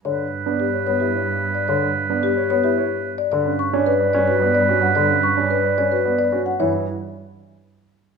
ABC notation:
X:1
M:3/4
L:1/16
Q:1/4=110
K:Glyd
V:1 name="Marimba"
c z3 G z c G z3 d | c z3 G z c G z3 d | d z c' z B z d B z d z f | d z c' z B z d B z d z f |
c2 z8 z2 |]
V:2 name="Oboe"
B12- | B8- B3 z | B12- | B8- B3 z |
z12 |]
V:3 name="Grand piano"
z3 D z c z E c z3 | z3 D z c z E c z3 | z C z D z d z F d z F z | z C z D z d z F d z F z |
E2 z8 z2 |]
V:4 name="Grand piano"
D, z2 B, z2 B, z4 z | D, z2 B, z2 B, z4 z | D, z2 C z2 C z B, z C z | D, z2 C z2 C z B, z C z |
E,2 z8 z2 |]
V:5 name="Double bass" clef=bass
G,,12- | G,,12 | G,,12- | G,,12 |
G,,2 z8 z2 |]